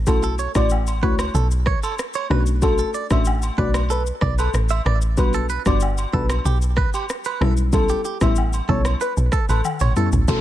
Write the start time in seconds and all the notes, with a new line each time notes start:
0.07 B1 A3 C#4 E4 F#4 A4, kick, high agogo, shaker
0.23 A4, shaker
0.39 C#5, shaker
0.55 A1 A3 C#4 E4 F#4 D5, kick, cross-stick, high agogo, shaker
0.70 low woodblock, shaker
0.87 high agogo, shaker
1.02 C#2 A3 C#4 E4 F#4 B4 C#5, kick
1.19 cross-stick, high agogo, shaker
1.34 B1 A4, shaker
1.51 shaker
1.66 C#5, kick, cross-stick
1.83 A4, high agogo, shaker
1.99 cross-stick, shaker
2.14 C#5, high agogo, shaker
2.30 B1 A3 C#4 D4 F#4 B4, cross-stick
2.46 shaker
2.62 A3 C#4 D4 F#4 A4, kick, high agogo, shaker
2.78 A4, shaker
2.94 D5, shaker
3.10 A1 A3 C#4 D4 F#4 E5, kick, cross-stick, high agogo, shaker
3.25 low woodblock, shaker
3.42 high agogo, shaker
3.58 B1 A3 C#4 D4 F#4 B4 D5, kick
3.74 cross-stick, high agogo, shaker
3.90 A4 B4, shaker
4.07 shaker
4.21 B1 D5, kick, cross-stick
4.38 A4 B4, high agogo, shaker
4.54 A1, cross-stick, shaker
4.69 E5, high agogo, shaker
4.86 A1 D5, cross-stick
5.02 shaker
5.17 B1 G3 B3 D4 F#4 B4, kick, high agogo, shaker
5.33 A4, shaker
5.49 B4, shaker
5.66 G1 G3 B3 D4 F#4 D5, kick, cross-stick, high agogo, shaker
5.80 low woodblock, shaker
5.98 high agogo, shaker
6.13 B1 G3 B3 D4 F#4 A4 B4, kick
6.30 cross-stick, high agogo, shaker
6.45 B1 G4, shaker
6.62 shaker
6.77 B4, kick, cross-stick
6.94 G4, high agogo, shaker
7.09 cross-stick, shaker
7.24 B4, high agogo, shaker
7.41 B1 G3 B3 C#4 E4 A4, cross-stick
7.57 shaker
7.73 G3 B3 C#4 E4 A4, kick, high agogo, shaker
7.89 G4, shaker
8.05 G4, shaker
8.21 A1 G3 B3 C#4 E4 E5, kick, cross-stick, high agogo, shaker
8.36 low woodblock, shaker
8.53 high agogo, shaker
8.68 B1 G3 B3 C#4 E4 A4 C#5, kick
8.85 cross-stick, high agogo, shaker
9.01 B4, shaker
9.17 B1, shaker
9.32 A4, kick, cross-stick, shaker
9.49 A1 A4 B4, high agogo, shaker
9.64 high tom, low woodblock, shaker
9.80 A1 C#5, mid tom, high agogo, shaker
9.96 G3 B3 C#4 E4 A4, mid tom, shaker
10.12 A1, floor tom, shaker
10.28 B1 A3 C#4 E4 F#4 A4, kick, downlifter, high agogo, shaker